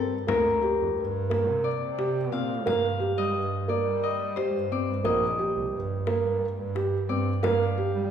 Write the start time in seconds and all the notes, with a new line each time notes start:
Already playing: C4 C5
0.11 G2
0.27 D2 A#3 A#4, frame drum
0.62 G4, frame drum
0.80 F2
0.96 G2, frame drum
1.30 A#3, frame drum
1.48 C3
1.64 D5
1.82 C3
1.98 G4, frame drum
2.32 A#2 C4 F5
2.66 G2 A#3 F5, frame drum
3.00 G4, frame drum
3.17 G3 D#5
3.34 G2, frame drum
3.68 A#3 D5
3.85 G3
4.03 D#5
4.36 G4 C5, frame drum
4.54 G2
4.71 C4 D5
4.88 G2
5.04 A#1 A#3 D#5, frame drum
5.39 G4
5.56 C2
5.73 G2
6.07 A#3, frame drum
6.24 G2
6.58 G2
6.75 G4, frame drum
7.09 G2 C4 D5
7.43 G2 A#3 F5, frame drum
7.77 G4, frame drum
7.95 G3